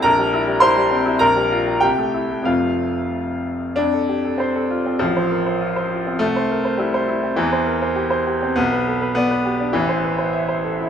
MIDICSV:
0, 0, Header, 1, 2, 480
1, 0, Start_track
1, 0, Key_signature, -1, "major"
1, 0, Tempo, 595238
1, 37, Time_signature, 2, 2, 24, 8
1, 1477, Tempo, 649351
1, 2917, Tempo, 614754
1, 3877, Tempo, 591133
1, 8197, Tempo, 623701
1, 8632, End_track
2, 0, Start_track
2, 0, Title_t, "Grand piano"
2, 0, Program_c, 0, 0
2, 0, Control_c, 0, 64, 127
2, 19, Note_on_c, 0, 82, 120
2, 28, Note_on_c, 0, 70, 83
2, 32, Note_on_c, 0, 34, 90
2, 52, Control_c, 0, 64, 0
2, 148, Note_on_c, 0, 55, 65
2, 165, Control_c, 0, 64, 127
2, 272, Note_on_c, 0, 64, 70
2, 339, Note_off_c, 0, 55, 0
2, 383, Note_on_c, 0, 55, 68
2, 459, Note_off_c, 0, 64, 0
2, 469, Note_off_c, 0, 70, 0
2, 486, Note_on_c, 0, 84, 122
2, 497, Note_off_c, 0, 82, 0
2, 497, Note_on_c, 0, 72, 92
2, 501, Note_on_c, 0, 64, 68
2, 572, Note_off_c, 0, 55, 0
2, 619, Note_on_c, 0, 55, 76
2, 690, Note_off_c, 0, 64, 0
2, 731, Note_on_c, 0, 60, 62
2, 809, Note_off_c, 0, 55, 0
2, 853, Note_on_c, 0, 64, 67
2, 926, Note_off_c, 0, 60, 0
2, 941, Note_off_c, 0, 72, 0
2, 947, Note_off_c, 0, 34, 0
2, 961, Note_on_c, 0, 82, 117
2, 968, Note_off_c, 0, 84, 0
2, 971, Note_on_c, 0, 70, 93
2, 976, Note_off_c, 0, 64, 0
2, 978, Note_on_c, 0, 34, 87
2, 995, Control_c, 0, 64, 0
2, 1099, Note_on_c, 0, 55, 62
2, 1101, Control_c, 0, 64, 127
2, 1225, Note_on_c, 0, 65, 67
2, 1300, Note_off_c, 0, 55, 0
2, 1346, Note_on_c, 0, 55, 58
2, 1427, Note_off_c, 0, 65, 0
2, 1442, Note_off_c, 0, 70, 0
2, 1456, Note_on_c, 0, 79, 94
2, 1462, Note_off_c, 0, 34, 0
2, 1466, Note_on_c, 0, 67, 71
2, 1469, Note_off_c, 0, 82, 0
2, 1474, Note_on_c, 0, 36, 67
2, 1475, Note_off_c, 0, 55, 0
2, 1494, Control_c, 0, 64, 0
2, 1589, Note_on_c, 0, 57, 58
2, 1638, Control_c, 0, 64, 127
2, 1706, Note_on_c, 0, 64, 52
2, 1785, Note_off_c, 0, 57, 0
2, 1830, Note_on_c, 0, 57, 47
2, 1906, Note_off_c, 0, 64, 0
2, 1911, Note_on_c, 0, 41, 61
2, 1919, Note_off_c, 0, 57, 0
2, 1924, Note_on_c, 0, 53, 45
2, 1925, Note_off_c, 0, 67, 0
2, 1930, Note_on_c, 0, 57, 46
2, 1936, Note_on_c, 0, 77, 77
2, 1941, Note_on_c, 0, 29, 54
2, 1942, Note_on_c, 0, 60, 45
2, 1943, Note_off_c, 0, 36, 0
2, 1943, Note_on_c, 0, 65, 59
2, 1950, Note_off_c, 0, 79, 0
2, 1973, Control_c, 0, 64, 0
2, 2092, Control_c, 0, 64, 127
2, 2645, Note_off_c, 0, 65, 0
2, 2671, Note_off_c, 0, 77, 0
2, 2864, Note_off_c, 0, 41, 0
2, 2870, Note_off_c, 0, 53, 0
2, 2873, Note_off_c, 0, 57, 0
2, 2879, Note_off_c, 0, 29, 0
2, 2880, Note_off_c, 0, 60, 0
2, 2901, Note_on_c, 0, 62, 105
2, 2917, Note_on_c, 0, 41, 72
2, 2932, Control_c, 0, 64, 0
2, 3040, Note_on_c, 0, 69, 51
2, 3045, Control_c, 0, 64, 127
2, 3159, Note_on_c, 0, 67, 45
2, 3230, Note_off_c, 0, 69, 0
2, 3278, Note_off_c, 0, 67, 0
2, 3285, Note_on_c, 0, 69, 51
2, 3384, Note_on_c, 0, 60, 71
2, 3388, Note_off_c, 0, 62, 0
2, 3401, Note_on_c, 0, 72, 55
2, 3474, Note_off_c, 0, 69, 0
2, 3524, Note_on_c, 0, 69, 57
2, 3593, Note_off_c, 0, 72, 0
2, 3639, Note_on_c, 0, 65, 52
2, 3714, Note_off_c, 0, 69, 0
2, 3750, Note_off_c, 0, 60, 0
2, 3762, Note_on_c, 0, 60, 50
2, 3831, Note_off_c, 0, 65, 0
2, 3849, Note_off_c, 0, 41, 0
2, 3864, Note_on_c, 0, 53, 93
2, 3878, Note_on_c, 0, 33, 75
2, 3880, Note_off_c, 0, 60, 0
2, 3894, Control_c, 0, 64, 0
2, 4004, Note_on_c, 0, 72, 55
2, 4009, Control_c, 0, 64, 127
2, 4123, Note_on_c, 0, 70, 44
2, 4198, Note_off_c, 0, 72, 0
2, 4245, Note_off_c, 0, 70, 0
2, 4247, Note_on_c, 0, 72, 48
2, 4364, Note_on_c, 0, 65, 54
2, 4440, Note_off_c, 0, 72, 0
2, 4490, Note_on_c, 0, 72, 58
2, 4559, Note_off_c, 0, 65, 0
2, 4617, Note_on_c, 0, 65, 47
2, 4682, Note_off_c, 0, 72, 0
2, 4736, Note_on_c, 0, 60, 51
2, 4806, Note_off_c, 0, 65, 0
2, 4821, Note_off_c, 0, 33, 0
2, 4836, Note_on_c, 0, 57, 105
2, 4843, Note_off_c, 0, 53, 0
2, 4852, Note_on_c, 0, 36, 72
2, 4854, Note_off_c, 0, 60, 0
2, 4864, Control_c, 0, 64, 0
2, 4976, Note_on_c, 0, 72, 61
2, 5010, Control_c, 0, 64, 127
2, 5096, Note_on_c, 0, 70, 47
2, 5166, Note_off_c, 0, 72, 0
2, 5209, Note_on_c, 0, 72, 54
2, 5214, Note_off_c, 0, 70, 0
2, 5311, Note_on_c, 0, 55, 74
2, 5323, Note_off_c, 0, 57, 0
2, 5325, Note_on_c, 0, 64, 57
2, 5400, Note_off_c, 0, 72, 0
2, 5445, Note_on_c, 0, 72, 65
2, 5517, Note_off_c, 0, 64, 0
2, 5562, Note_on_c, 0, 64, 54
2, 5636, Note_off_c, 0, 72, 0
2, 5682, Note_on_c, 0, 60, 55
2, 5753, Note_off_c, 0, 64, 0
2, 5775, Note_off_c, 0, 36, 0
2, 5789, Note_on_c, 0, 52, 95
2, 5794, Note_off_c, 0, 55, 0
2, 5802, Note_off_c, 0, 60, 0
2, 5804, Note_on_c, 0, 40, 80
2, 5816, Control_c, 0, 64, 0
2, 5920, Note_on_c, 0, 72, 57
2, 5970, Control_c, 0, 64, 127
2, 6033, Note_on_c, 0, 70, 47
2, 6109, Note_off_c, 0, 72, 0
2, 6154, Note_off_c, 0, 70, 0
2, 6158, Note_on_c, 0, 72, 55
2, 6271, Note_on_c, 0, 67, 64
2, 6349, Note_off_c, 0, 72, 0
2, 6390, Note_on_c, 0, 72, 63
2, 6471, Note_off_c, 0, 67, 0
2, 6524, Note_on_c, 0, 67, 54
2, 6597, Note_off_c, 0, 72, 0
2, 6651, Note_on_c, 0, 60, 56
2, 6727, Note_off_c, 0, 67, 0
2, 6748, Note_off_c, 0, 40, 0
2, 6757, Note_on_c, 0, 59, 103
2, 6770, Note_off_c, 0, 52, 0
2, 6771, Note_on_c, 0, 35, 75
2, 6777, Note_off_c, 0, 60, 0
2, 6792, Control_c, 0, 64, 0
2, 6895, Note_on_c, 0, 71, 64
2, 6938, Control_c, 0, 64, 127
2, 7021, Note_on_c, 0, 69, 50
2, 7087, Note_off_c, 0, 71, 0
2, 7132, Note_on_c, 0, 71, 63
2, 7137, Note_off_c, 0, 69, 0
2, 7226, Note_off_c, 0, 59, 0
2, 7238, Note_on_c, 0, 59, 101
2, 7255, Note_on_c, 0, 74, 66
2, 7321, Note_off_c, 0, 71, 0
2, 7370, Note_on_c, 0, 71, 60
2, 7441, Note_off_c, 0, 74, 0
2, 7485, Note_on_c, 0, 67, 52
2, 7558, Note_off_c, 0, 71, 0
2, 7604, Note_on_c, 0, 62, 56
2, 7674, Note_off_c, 0, 67, 0
2, 7691, Note_off_c, 0, 35, 0
2, 7711, Note_on_c, 0, 52, 94
2, 7714, Note_off_c, 0, 59, 0
2, 7722, Note_off_c, 0, 62, 0
2, 7724, Note_on_c, 0, 33, 73
2, 7734, Control_c, 0, 64, 0
2, 7839, Note_on_c, 0, 72, 57
2, 7846, Control_c, 0, 64, 127
2, 7965, Note_on_c, 0, 71, 46
2, 8028, Note_off_c, 0, 72, 0
2, 8079, Note_on_c, 0, 72, 56
2, 8080, Note_off_c, 0, 71, 0
2, 8197, Note_on_c, 0, 76, 59
2, 8268, Note_off_c, 0, 72, 0
2, 8317, Note_on_c, 0, 72, 60
2, 8386, Note_off_c, 0, 76, 0
2, 8439, Note_on_c, 0, 69, 53
2, 8509, Note_off_c, 0, 72, 0
2, 8567, Note_on_c, 0, 64, 52
2, 8631, Note_off_c, 0, 69, 0
2, 8632, Note_off_c, 0, 33, 0
2, 8632, Note_off_c, 0, 52, 0
2, 8632, Note_off_c, 0, 64, 0
2, 8632, End_track
0, 0, End_of_file